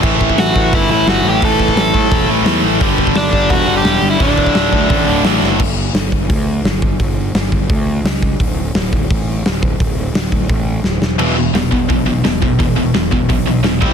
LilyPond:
<<
  \new Staff \with { instrumentName = "Overdriven electric guitar" } { \time 4/4 \key g \lydian \tempo 4 = 172 r4 fis'4 e'8 e'8 fis'8 g'8 | a'8 a'2 r4. | r4 d'4 fis'8. g'4 e'16 | d'2. r4 |
r1 | r1 | r1 | r1 |
r1 | r1 | }
  \new Staff \with { instrumentName = "Distorted electric guitar" } { \clef bass \time 4/4 \key g \lydian <a, e a>4. <a, e a>2~ <a, e a>8 | <a, e a>4. <a, e a>2~ <a, e a>8 | <g, d g>4. <g, d g>2~ <g, d g>8 | <d, a, d>4. <d, a, d>2~ <d, a, d>8 |
r1 | r1 | r1 | r1 |
<e, b, e>8 <e, b,>8 <e, b,>8 <e, b,>8 <e, b,>8 <e, b,>8 <e, b,>8 <e, b,>8 | <e, b,>8 <e, b,>8 <e, b,>8 <e, b,>8 <e, b,>8 <e, b,>8 <e, b,>8 <c g c'>8 | }
  \new Staff \with { instrumentName = "Distorted electric guitar" } { \clef bass \time 4/4 \key g \lydian <a, e a>2~ <a, e a>8 <a, e a>8 <a, e a>4 | <a, e a>2~ <a, e a>8 <a, e a>8 <a, e a>4 | <g, d g>2~ <g, d g>8 <g, d g>8 <g, d g>4 | <d, a, d>2~ <d, a, d>8 <d, a, d>8 <d, a, d>4 |
r1 | r1 | r1 | r1 |
<e, b, e>8 <e, b,>8 <e, b,>8 <e, b,>8 <e, b,>8 <e, b,>8 <e, b,>8 <e, b,>8 | <e, b,>8 <e, b,>8 <e, b,>8 <e, b,>8 <e, b,>8 <e, b,>8 <e, b,>8 <c g c'>8 | }
  \new Staff \with { instrumentName = "Picked electric bass" } { \clef bass \time 4/4 \key g \lydian a,,8 a,,8 a,,8 a,,8 g,,8 a,,8 g,,8 a,,8 | a,,4 a,,8 a,8 e,,8 a,,8 e,8 a,,8 | g,,8 g,,8 g,,8 g,,8 e,,8 g,,8 e,,8 g,,8 | d,,4 d,,8 d,8 a,,8 d,,8 a,,8 fis,,8 |
g,,4 g,,8 g,,8 d,4 g,,4 | g,,4 g,,8 g,,8 d,4 cis,4 | d,,4 d,,8 d,,8 a,,4 d,,4 | d,,4 d,,8 d,,8 a,,4 d,,8 e,,8 |
e,,4 e,,8 e,,8 b,,4 e,,4 | e,,4 e,,8 e,,8 b,,4 e,,8 c,8 | }
  \new DrumStaff \with { instrumentName = "Drums" } \drummode { \time 4/4 <cymc bd>8 bd16 bd16 <hho sn>8 bd8 <hho bd>4 <hho sn>4 | <hho bd>8 bd16 bd16 <hho sn>8 bd8 <hho bd>4 <hho sn>4 | <hho bd>8 bd16 bd16 <hho sn>8 bd8 <hho bd>4 <hho sn>4 | <hho bd>8 bd16 bd16 <hho sn>8 bd8 <hho bd>4 <hho sn>8 sn8 |
<cymc bd>4 <hho sn>8 bd8 <hho bd>4 <hho sn>8 bd8 | <hho bd>4 <hho sn>8 bd8 <hho bd>4 <hho sn>8 bd8 | <hho bd>4 <hho sn>8 bd8 <hho bd>4 <hho sn>8 bd8 | <hho bd>4 <hho sn>8 bd8 <hho bd>4 sn8 sn8 |
cymc4 <hho sn>8 bd8 <hho bd>4 <hho sn>8 bd8 | <hho bd>4 <hho sn>8 bd8 <hho bd>4 <hho sn>8 bd8 | }
>>